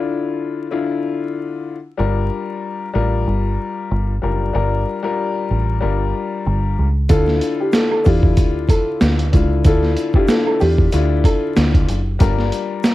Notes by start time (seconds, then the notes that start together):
Already playing: D3 D4 E4 F4
0.71 D3 D4 E4 F4
1.97 G1 G3 D4 F4 A#4
2.94 A1 G3 D4 F4 A#4
3.27 G1
3.91 G1
4.22 F#1 G3 D4 F4 A#4
4.53 G1 G3 D4 F4 A#4
5.03 G3 D4 F4 A#4
5.51 A1
5.80 G1 G3 D4 F4 A#4
6.47 G1
6.79 C#2
7.09 D2 D3 D4 E4 F4 A4, kick, closed hi-hat, shaker
7.28 snare
7.41 closed hi-hat, shaker
7.60 G4
7.72 A4, snare, closed hi-hat, shaker
7.91 A4, high woodblock
8.04 E2 D3 D4 E4 F4 G4, kick, open hi-hat, shaker
8.23 kick
8.37 D2, kick, closed hi-hat, shaker
8.69 A4, kick, closed hi-hat, high woodblock, shaker
9.01 D2, snare, closed hi-hat, shaker
9.19 closed hi-hat
9.32 C#2 D3 D4 E4 F4, kick, closed hi-hat, shaker
9.65 D2 D3 D4 E4 F4 A4, kick, closed hi-hat, shaker
9.83 snare
9.97 closed hi-hat, shaker
10.14 D3 D4 E4 F4 G4, kick
10.28 A4, snare, closed hi-hat, shaker
10.46 A4, high woodblock
10.60 E2 G4, open hi-hat, shaker
10.78 kick
10.92 D2 D3 D4 E4 F4, closed hi-hat, shaker
11.24 A4, kick, closed hi-hat, high woodblock, shaker
11.56 D2, snare, closed hi-hat, shaker
11.74 kick, closed hi-hat
11.89 F#1, closed hi-hat, shaker
12.19 G1 G3 D4 F4 A#4, kick, closed hi-hat, shaker
12.38 snare
12.52 closed hi-hat, shaker
12.83 snare, closed hi-hat, shaker